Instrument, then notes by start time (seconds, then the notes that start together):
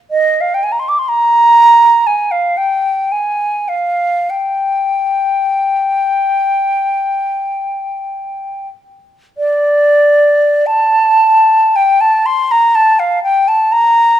flute
0.11 D#5
0.41 F5
0.54 G5
0.63 G#5
0.72 A#5
0.79 C6
0.88 D6
0.99 C6
1.08 A#5
2.06 G#5
2.31 F5
2.57 G5
3.12 G#5
3.68 F5
4.30 G5
9.37 D5
10.66 A5
11.76 G5
12.00 A5
12.26 C6
12.51 A#5
12.75 A5
12.99 F5
13.23 G5
13.48 A5
13.72 A#5